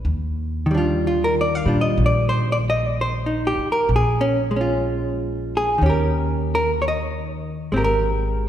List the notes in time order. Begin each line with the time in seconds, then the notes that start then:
0.05 D#2
0.66 D#3
0.71 G3 D4
0.77 F4
1.07 F4
1.24 A#4
1.41 D5
1.55 F5
1.66 A#2 G3 D4 F4
1.81 D#5
1.98 A#1
2.06 D5
2.29 C5
2.52 D5
2.70 D#5
2.87 D5
3.01 C5
3.26 D#4
3.47 G4
3.57 muted upright bass stroke
3.72 A#4
3.89 A#1
3.96 G#4
4.21 C#4
4.51 G#3
4.56 C#4
4.61 F4
5.57 G#4
5.78 D#2 D#3
5.83 C#4 G4
5.90 A#4
6.55 A#4
6.82 C#5
6.88 D#5
7.72 G#1 G#3 C4
7.76 G4 A#4
7.84 A#4